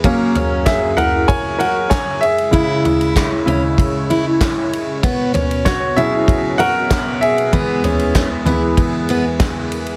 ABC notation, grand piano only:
X:1
M:4/4
L:1/8
Q:1/4=96
K:Elyd
V:1 name="Grand piano"
z2 [Ge] [Af] [cg] [Af] [cg] [Ge]- | [Ge] z6 z | z2 [Fc] [Ge]2 [Af]2 [Ge]- | [Ge]3 z4 z |]
V:2 name="Grand piano" clef=bass
[F,A,C] z6 z | [C,G,E]3 [C,G,E] z4 | z3 [B,,F,C]3 z2 | [E,G,B,]3 [E,G,B,] z4 |]